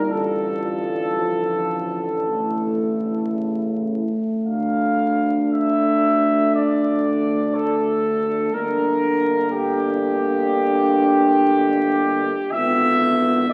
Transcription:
Already playing: trombone A#2, trombone section G3
0.09 tuba A1, trombone D3, french horn section F4, trumpet section A4
1.19 trombone section F3
2.27 trombone section A3, french horn section E4
3.35 trombone C#3
4.44 tuba D2, trombone D3, french horn section D4, trumpet section F5
5.52 trumpet section E5
6.54 trumpet section D5
7.54 trumpet section A4
8.53 tuba G1, trombone D3, trombone section A#3, french horn section D4, trumpet section A#4
9.52 trumpet section G4
12.50 tuba G#1, trombone D3, trombone section B3, french horn section F4, trumpet section E5
13.47 trombone D3, trombone section B3, french horn section F4, trumpet section D5

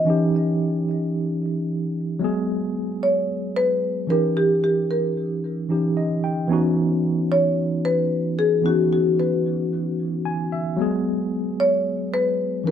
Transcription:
Already playing: marimba D#5
0.05 tine electric piano E3 C#4 D#4
0.10 tine electric piano G4
2.19 tine electric piano F#3 G#3 B3
2.24 tine electric piano G#4
3.03 marimba C#5
3.56 marimba B4
4.07 tine electric piano E3 C#4 D#4, marimba A#4
4.12 tine electric piano G4
4.37 marimba G4
4.64 marimba G4
4.91 marimba A#4
5.69 tine electric piano E3 C#4 D#4 G4
5.97 tine electric piano D#5
6.24 tine electric piano G5
6.48 tine electric piano E3 B3 C#4 D#4
6.53 tine electric piano F#4
7.32 marimba C#5
7.85 marimba B4
8.39 marimba G#4
8.62 tine electric piano E3 B3 C#4 D#4, marimba F#4
8.67 tine electric piano F#4
8.93 marimba F#4
9.20 marimba B4
10.25 tine electric piano G#5
10.52 tine electric piano E5
10.77 tine electric piano F#3 G#3 B3
10.82 tine electric piano G#4
11.60 marimba C#5
12.14 marimba B4
12.64 tine electric piano E3 C#4 D#4, marimba A#4

